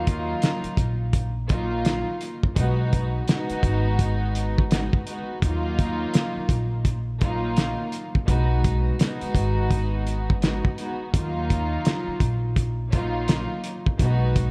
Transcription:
Already playing: upright bass D#2, string section F#3 A#3 D#4 F4
0.07 kick, closed hi-hat
0.42 snare, closed hi-hat
0.64 muted upright bass stroke, closed hi-hat
0.77 upright bass A#1, kick, closed hi-hat
1.13 kick, closed hi-hat
1.48 string section F#3 A#3 D#4 F4, kick, closed hi-hat
1.85 snare, closed hi-hat
2.21 closed hi-hat
2.43 kick
2.54 upright bass B1, string section G#3 B3 D#4 F#4, kick, closed hi-hat
2.93 kick, closed hi-hat
3.28 string section G#3 B3 D#4 F#4, snare, closed hi-hat
3.50 muted upright bass stroke, closed hi-hat
3.63 upright bass G#1, kick, closed hi-hat
3.99 kick, closed hi-hat
4.35 closed hi-hat
4.58 kick
4.70 string section G#3 B3 D#4 F#4, snare, closed hi-hat
4.93 kick
5.05 string section G#3 B3 D#4 F#4, closed hi-hat
5.41 upright bass D#2, string section F#3 A#3 D#4 F4, kick, closed hi-hat
5.79 kick, closed hi-hat
6.14 snare, closed hi-hat
6.36 muted upright bass stroke
6.49 upright bass A#1, kick, closed hi-hat
6.85 kick, closed hi-hat
7.20 string section F#3 A#3 D#4 F4, kick, closed hi-hat
7.56 snare, closed hi-hat
7.92 closed hi-hat
8.15 kick
8.26 upright bass B1, string section G#3 B3 D#4 F#4, kick, closed hi-hat
8.64 kick, closed hi-hat
8.99 string section G#3 B3 D#4 F#4, snare, closed hi-hat
9.21 muted upright bass stroke, closed hi-hat
9.35 upright bass G#1, kick, closed hi-hat
9.71 kick, closed hi-hat
10.07 closed hi-hat
10.30 kick
10.41 string section G#3 B3 D#4 F#4, snare, closed hi-hat
10.65 kick
10.77 string section G#3 B3 D#4 F#4, closed hi-hat
11.13 upright bass D#2, string section F#3 A#3 D#4 F4, kick, closed hi-hat
11.50 kick, closed hi-hat
11.85 snare, closed hi-hat
12.07 muted upright bass stroke
12.20 upright bass A#1, kick, closed hi-hat
12.56 kick, closed hi-hat
12.91 string section F#3 A#3 D#4 F4, kick, closed hi-hat
13.28 snare, closed hi-hat
13.64 closed hi-hat
13.86 kick
13.97 upright bass B1, string section G#3 B3 D#4 F#4, kick, closed hi-hat
14.36 kick, closed hi-hat

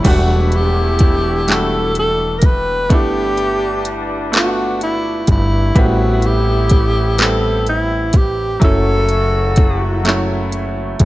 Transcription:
0.03 analog synth bass E1, horn section B2 A3 E4, grand piano G3 A3 D4, kick, closed hi-hat, crash
0.07 tenor saxophone F#4, grand piano F#5
0.52 closed hi-hat
0.56 tenor saxophone G4
0.99 kick, closed hi-hat
1.46 grand piano G3 A3 D4, clap, closed hi-hat
1.51 grand piano F#4, tenor saxophone A4
1.95 tenor saxophone A4, closed hi-hat
2.39 tenor saxophone A#4, closed hi-hat
2.43 tenor saxophone B4, kick
2.90 analog synth bass G1, horn section B2 G3 D4, grand piano A3 B3 D4, kick, closed hi-hat
2.94 grand piano E4, tenor saxophone G4
3.37 closed hi-hat
3.85 closed hi-hat
4.32 grand piano A3 B3 D4 F4, clap, closed hi-hat
4.36 tenor saxophone F#4
4.42 grand piano F#4
4.81 tenor saxophone E4, closed hi-hat
5.27 analog synth bass G1, tenor saxophone E4, kick, closed hi-hat
5.75 analog synth bass A1, horn section C3 B3 E4, grand piano G3 B3 C4 E4, tenor saxophone F#4, kick, closed hi-hat
6.22 tenor saxophone G4, closed hi-hat
6.70 kick, closed hi-hat
7.17 grand piano G3 B3 C4 G4, clap, closed hi-hat
7.22 tenor saxophone A4
7.67 tenor saxophone E4, closed hi-hat
8.13 tenor saxophone G4, kick, closed hi-hat
8.60 analog synth bass F#1, horn section C#3 A3 F#4, grand piano F#3 A3 C#4 E4, kick, closed hi-hat
8.64 tenor saxophone A4
9.09 closed hi-hat
9.56 kick, closed hi-hat
10.03 grand piano F#3 A3 C#4, clap, closed hi-hat
10.08 grand piano E4
10.52 closed hi-hat
11.00 analog synth bass F#1, kick, closed hi-hat

